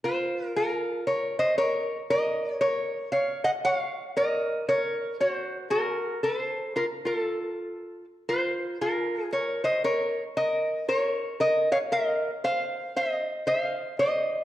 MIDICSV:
0, 0, Header, 1, 2, 480
1, 0, Start_track
1, 0, Key_signature, -5, "minor"
1, 0, Tempo, 515907
1, 32, Time_signature, 4, 2, 24, 8
1, 13435, End_track
2, 0, Start_track
2, 0, Title_t, "Resonator guitar played with a steel bar"
2, 0, Program_c, 0, 25
2, 38, Note_on_c, 0, 72, 81
2, 46, Note_on_c, 0, 65, 67
2, 429, Note_off_c, 0, 72, 0
2, 429, Note_on_c, 0, 70, 81
2, 484, Note_off_c, 0, 65, 0
2, 525, Note_off_c, 0, 70, 0
2, 525, Note_on_c, 0, 70, 86
2, 529, Note_on_c, 0, 65, 62
2, 966, Note_off_c, 0, 65, 0
2, 985, Note_off_c, 0, 70, 0
2, 994, Note_on_c, 0, 73, 83
2, 995, Note_on_c, 0, 70, 61
2, 1260, Note_off_c, 0, 70, 0
2, 1287, Note_off_c, 0, 73, 0
2, 1293, Note_on_c, 0, 75, 95
2, 1295, Note_on_c, 0, 72, 69
2, 1464, Note_off_c, 0, 72, 0
2, 1464, Note_off_c, 0, 75, 0
2, 1468, Note_on_c, 0, 73, 83
2, 1472, Note_on_c, 0, 70, 71
2, 1824, Note_off_c, 0, 73, 0
2, 1826, Note_off_c, 0, 70, 0
2, 1956, Note_on_c, 0, 70, 75
2, 1957, Note_on_c, 0, 75, 97
2, 2397, Note_off_c, 0, 70, 0
2, 2423, Note_off_c, 0, 75, 0
2, 2427, Note_on_c, 0, 73, 92
2, 2432, Note_on_c, 0, 70, 72
2, 2874, Note_off_c, 0, 70, 0
2, 2898, Note_off_c, 0, 73, 0
2, 2902, Note_on_c, 0, 77, 88
2, 2909, Note_on_c, 0, 73, 64
2, 3171, Note_off_c, 0, 77, 0
2, 3175, Note_off_c, 0, 73, 0
2, 3202, Note_on_c, 0, 75, 80
2, 3204, Note_on_c, 0, 78, 101
2, 3252, Note_off_c, 0, 78, 0
2, 3254, Note_off_c, 0, 75, 0
2, 3393, Note_on_c, 0, 77, 108
2, 3398, Note_on_c, 0, 73, 78
2, 3745, Note_off_c, 0, 77, 0
2, 3748, Note_off_c, 0, 73, 0
2, 3876, Note_on_c, 0, 70, 77
2, 3881, Note_on_c, 0, 75, 95
2, 4316, Note_off_c, 0, 70, 0
2, 4356, Note_off_c, 0, 75, 0
2, 4359, Note_on_c, 0, 73, 92
2, 4360, Note_on_c, 0, 70, 74
2, 4799, Note_off_c, 0, 70, 0
2, 4842, Note_on_c, 0, 66, 61
2, 4844, Note_off_c, 0, 73, 0
2, 4847, Note_on_c, 0, 72, 79
2, 5280, Note_off_c, 0, 66, 0
2, 5280, Note_off_c, 0, 72, 0
2, 5306, Note_on_c, 0, 66, 68
2, 5311, Note_on_c, 0, 70, 82
2, 5751, Note_off_c, 0, 66, 0
2, 5793, Note_off_c, 0, 70, 0
2, 5797, Note_on_c, 0, 69, 66
2, 5804, Note_on_c, 0, 72, 88
2, 6237, Note_off_c, 0, 69, 0
2, 6288, Note_off_c, 0, 72, 0
2, 6288, Note_on_c, 0, 65, 59
2, 6294, Note_on_c, 0, 70, 79
2, 6362, Note_off_c, 0, 65, 0
2, 6368, Note_off_c, 0, 70, 0
2, 6561, Note_on_c, 0, 65, 49
2, 6573, Note_on_c, 0, 69, 65
2, 7480, Note_off_c, 0, 65, 0
2, 7486, Note_off_c, 0, 69, 0
2, 7711, Note_on_c, 0, 72, 84
2, 7716, Note_on_c, 0, 65, 60
2, 8155, Note_off_c, 0, 72, 0
2, 8158, Note_off_c, 0, 65, 0
2, 8200, Note_on_c, 0, 65, 58
2, 8202, Note_on_c, 0, 70, 77
2, 8641, Note_off_c, 0, 65, 0
2, 8666, Note_off_c, 0, 70, 0
2, 8676, Note_on_c, 0, 70, 64
2, 8681, Note_on_c, 0, 73, 81
2, 8941, Note_off_c, 0, 70, 0
2, 8965, Note_off_c, 0, 73, 0
2, 8968, Note_on_c, 0, 72, 69
2, 8974, Note_on_c, 0, 75, 83
2, 9141, Note_off_c, 0, 72, 0
2, 9155, Note_off_c, 0, 75, 0
2, 9158, Note_on_c, 0, 73, 91
2, 9162, Note_on_c, 0, 70, 71
2, 9511, Note_off_c, 0, 73, 0
2, 9513, Note_off_c, 0, 70, 0
2, 9646, Note_on_c, 0, 70, 75
2, 9647, Note_on_c, 0, 75, 97
2, 10086, Note_off_c, 0, 70, 0
2, 10126, Note_off_c, 0, 75, 0
2, 10127, Note_on_c, 0, 70, 71
2, 10130, Note_on_c, 0, 73, 88
2, 10567, Note_off_c, 0, 70, 0
2, 10607, Note_on_c, 0, 70, 66
2, 10609, Note_off_c, 0, 73, 0
2, 10613, Note_on_c, 0, 75, 97
2, 10868, Note_off_c, 0, 70, 0
2, 10899, Note_off_c, 0, 75, 0
2, 10902, Note_on_c, 0, 73, 77
2, 10904, Note_on_c, 0, 77, 106
2, 10951, Note_off_c, 0, 77, 0
2, 10952, Note_off_c, 0, 73, 0
2, 11089, Note_on_c, 0, 70, 79
2, 11094, Note_on_c, 0, 75, 102
2, 11439, Note_off_c, 0, 70, 0
2, 11442, Note_off_c, 0, 75, 0
2, 11575, Note_on_c, 0, 72, 76
2, 11579, Note_on_c, 0, 77, 94
2, 12012, Note_off_c, 0, 72, 0
2, 12060, Note_off_c, 0, 77, 0
2, 12061, Note_on_c, 0, 72, 67
2, 12065, Note_on_c, 0, 75, 93
2, 12496, Note_off_c, 0, 72, 0
2, 12531, Note_on_c, 0, 72, 74
2, 12533, Note_off_c, 0, 75, 0
2, 12537, Note_on_c, 0, 77, 90
2, 12971, Note_off_c, 0, 72, 0
2, 13015, Note_off_c, 0, 77, 0
2, 13018, Note_on_c, 0, 72, 67
2, 13018, Note_on_c, 0, 75, 91
2, 13435, Note_off_c, 0, 72, 0
2, 13435, Note_off_c, 0, 75, 0
2, 13435, End_track
0, 0, End_of_file